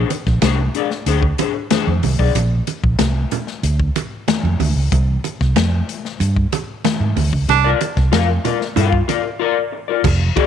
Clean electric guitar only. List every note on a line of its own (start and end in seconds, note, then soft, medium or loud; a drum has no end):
0.10 muted clean electric guitar stroke soft
0.27 muted clean electric guitar stroke soft
0.42 0.58 D4 medium
0.42 0.59 G#4 medium
0.42 0.57 C5 medium
0.59 muted clean electric guitar stroke soft
0.75 0.87 D4 medium
0.75 0.88 G#4 medium
0.75 0.88 D5 medium
0.91 muted clean electric guitar stroke soft
1.07 1.23 D4 medium
1.07 1.23 G#4 medium
1.07 1.22 C5 medium
1.23 muted clean electric guitar stroke medium
1.39 1.51 D4 medium
1.39 1.52 G#4 medium
1.39 1.52 C5 medium
1.55 muted clean electric guitar stroke soft
1.71 1.87 D4 medium
1.71 1.87 G#4 medium
1.71 1.88 C5 loud
2.03 muted clean electric guitar stroke soft
2.19 2.32 D4 soft
2.19 2.32 G#4 medium
2.19 2.31 D5 medium
7.48 muted clean electric guitar stroke soft
7.64 7.79 F4 medium
7.64 7.80 A#4 medium
7.64 7.80 D5 medium
7.80 muted clean electric guitar stroke soft
7.97 muted clean electric guitar stroke soft
8.12 8.28 F4 medium
8.12 8.28 A#4 medium
8.12 8.28 F5 loud
8.28 muted clean electric guitar stroke soft
8.44 8.57 F4 medium
8.44 8.57 A#4 medium
8.44 8.58 D5 medium
8.61 muted clean electric guitar stroke soft
8.76 8.96 F4 medium
8.76 8.92 A#4 medium
8.76 8.92 F5 medium
8.93 muted clean electric guitar stroke soft
9.08 9.21 F4 medium
9.08 9.21 A#4 medium
9.08 9.21 D5 medium
9.24 muted clean electric guitar stroke soft
9.39 9.56 F4 medium
9.39 9.56 A#4 medium
9.39 9.57 D5 loud
9.72 muted clean electric guitar stroke soft
9.88 10.02 F4 medium
9.88 10.01 A#4 medium
9.88 10.01 D5 medium
10.36 10.47 G4 medium
10.36 10.47 A4 loud
10.36 10.47 D#5 medium